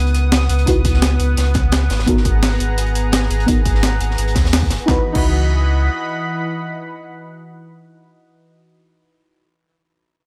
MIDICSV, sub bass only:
0, 0, Header, 1, 2, 480
1, 0, Start_track
1, 0, Tempo, 350877
1, 919, Time_signature, 4, 2, 24, 8
1, 14038, End_track
2, 0, Start_track
2, 0, Title_t, "Sub bass"
2, 0, Program_c, 0, 38
2, 0, Note_on_c, 0, 37, 82
2, 663, Note_off_c, 0, 37, 0
2, 678, Note_on_c, 0, 37, 98
2, 897, Note_off_c, 0, 37, 0
2, 920, Note_on_c, 0, 37, 100
2, 1622, Note_off_c, 0, 37, 0
2, 1639, Note_on_c, 0, 37, 84
2, 1857, Note_off_c, 0, 37, 0
2, 1878, Note_on_c, 0, 37, 90
2, 2591, Note_off_c, 0, 37, 0
2, 2599, Note_on_c, 0, 32, 87
2, 2715, Note_off_c, 0, 32, 0
2, 2727, Note_on_c, 0, 32, 79
2, 2828, Note_off_c, 0, 32, 0
2, 2840, Note_on_c, 0, 32, 98
2, 3542, Note_off_c, 0, 32, 0
2, 3561, Note_on_c, 0, 32, 78
2, 4502, Note_off_c, 0, 32, 0
2, 4520, Note_on_c, 0, 32, 101
2, 4737, Note_off_c, 0, 32, 0
2, 4760, Note_on_c, 0, 32, 100
2, 5462, Note_off_c, 0, 32, 0
2, 5479, Note_on_c, 0, 32, 82
2, 5697, Note_off_c, 0, 32, 0
2, 5719, Note_on_c, 0, 32, 90
2, 5960, Note_on_c, 0, 39, 84
2, 5981, Note_off_c, 0, 32, 0
2, 6440, Note_on_c, 0, 30, 94
2, 6461, Note_off_c, 0, 39, 0
2, 6555, Note_off_c, 0, 30, 0
2, 6679, Note_on_c, 0, 37, 92
2, 6820, Note_off_c, 0, 37, 0
2, 7047, Note_on_c, 0, 37, 94
2, 8065, Note_off_c, 0, 37, 0
2, 14038, End_track
0, 0, End_of_file